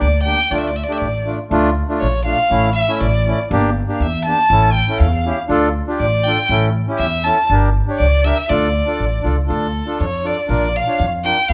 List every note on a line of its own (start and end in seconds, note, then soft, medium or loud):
0.01 0.31 D2 medium
0.01 0.22 D5 medium
0.22 0.38 A#3 medium
0.22 0.39 D4 soft
0.22 0.52 G5 loud
0.26 0.39 G4 medium
0.50 0.81 D2 medium
0.50 0.70 A3 medium
0.50 0.70 D4 medium
0.50 0.71 F4 medium
0.50 0.60 D5 medium
0.58 0.69 E5 medium
0.67 0.78 D5 medium
0.76 0.85 E5 medium
0.83 0.94 D5 medium
0.88 1.07 A3 medium
0.88 1.07 D4 medium
0.88 1.08 G4 medium
0.92 0.99 E5 medium
0.98 1.31 A1 medium
0.98 1.25 D5 medium
1.25 1.38 A3 medium
1.25 1.39 D4 soft
1.25 1.39 F4 medium
1.50 1.81 D2 medium
1.50 1.70 A3 medium
1.50 1.70 D4 medium
1.50 1.70 F4 loud
1.88 2.07 A3 medium
1.88 2.08 D4 medium
1.88 2.08 F4 medium
2.00 2.32 A#1 medium
2.00 2.24 C#5 medium
2.25 2.38 A3 medium
2.25 2.38 D4 soft
2.25 2.39 F4 medium
2.25 2.72 F5 loud
2.50 2.81 A1 medium
2.50 2.69 A3 medium
2.50 2.70 C#4 medium
2.50 2.70 E4 medium
2.75 2.94 E5 loud
2.87 3.07 A3 medium
2.87 3.07 C#4 medium
2.87 3.07 E4 medium
2.94 3.02 E5 medium
3.00 3.31 A1 medium
3.00 3.38 D5 medium
3.26 3.38 A3 medium
3.26 3.39 C#4 medium
3.26 3.39 E4 medium
3.50 3.81 G1 loud
3.50 3.69 A#3 loud
3.50 3.70 D4 medium
3.50 3.70 G4 loud
3.87 4.06 A#3 medium
3.87 4.07 D4 soft
3.87 4.07 G4 medium
3.94 4.04 F5 soft
4.00 4.30 E2 medium
4.00 4.24 E5 medium
4.25 4.38 A#3 medium
4.25 4.39 D4 medium
4.25 4.39 G4 medium
4.25 4.73 A5 loud
4.50 4.80 A1 medium
4.50 4.69 C#4 medium
4.50 4.70 E4 medium
4.50 4.70 A4 medium
4.72 4.93 G5 medium
4.88 5.06 C#4 medium
4.88 5.07 E4 medium
4.88 5.08 A4 medium
4.93 4.99 G5 soft
4.98 5.30 E2 medium
4.98 5.36 F5 medium
5.26 5.38 C#4 medium
5.26 5.38 E4 soft
5.26 5.39 G4 medium
5.49 5.79 D2 medium
5.49 5.68 D4 loud
5.49 5.69 F4 medium
5.49 5.69 A4 loud
5.87 6.06 D4 medium
5.87 6.06 F4 medium
5.87 6.07 G4 medium
5.99 6.30 A1 medium
5.99 6.26 D5 medium
6.24 6.38 D4 medium
6.24 6.38 F4 medium
6.24 6.49 G5 loud
6.28 6.39 A4 medium
6.49 6.79 A1 medium
6.49 6.68 C#4 medium
6.49 6.69 E4 medium
6.49 6.69 A4 medium
6.88 7.06 C#4 medium
6.88 7.07 E4 medium
6.88 7.07 G4 medium
6.98 7.29 E2 medium
6.98 7.26 E5 medium
7.24 7.37 C#4 medium
7.24 7.38 E4 soft
7.24 7.38 A4 medium
7.24 7.49 A5 loud
7.50 7.80 G1 medium
7.50 7.69 D4 medium
7.50 7.69 G4 medium
7.50 7.70 A#4 medium
7.88 8.06 D4 medium
7.88 8.06 G4 medium
7.88 8.07 C#5 medium
7.98 8.30 C#2 medium
7.98 8.26 D5 loud
8.24 8.37 D4 medium
8.24 8.37 G4 medium
8.24 8.38 A#4 medium
8.24 8.51 E5 loud
8.49 8.80 D2 loud
8.49 8.68 D4 medium
8.49 8.68 F4 medium
8.49 8.69 A4 medium
8.49 9.24 D5 medium
8.86 9.05 D4 medium
8.86 9.05 F4 medium
8.86 9.06 A4 medium
9.00 9.22 A1 medium
9.22 9.47 C#2 medium
9.22 9.36 D4 medium
9.22 9.37 F4 medium
9.22 9.37 A4 medium
9.47 9.80 D2 medium
9.47 9.67 D4 medium
9.47 9.67 F4 medium
9.47 9.68 A4 medium
9.47 9.96 A4 medium
9.86 10.05 D4 medium
9.86 10.06 F4 medium
9.86 10.06 A4 medium
10.00 10.30 F2 medium
10.00 10.28 C#5 medium
10.24 10.37 D4 soft
10.24 10.37 F4 soft
10.24 10.38 A4 medium
10.24 10.50 D5 medium
10.47 10.79 A#1 medium
10.47 10.67 D4 medium
10.47 10.68 F4 medium
10.47 10.68 A#4 medium
10.47 10.77 D5 medium
10.76 11.00 F5 medium
10.86 11.06 D4 medium
10.86 11.06 F4 medium
10.86 11.07 C#5 medium
11.00 11.30 F2 medium
11.24 11.37 D4 medium
11.24 11.38 F4 medium
11.24 11.38 A#4 medium
11.24 11.50 G5 loud
11.48 11.53 E2 medium
11.48 11.53 B3 medium
11.48 11.53 F5 medium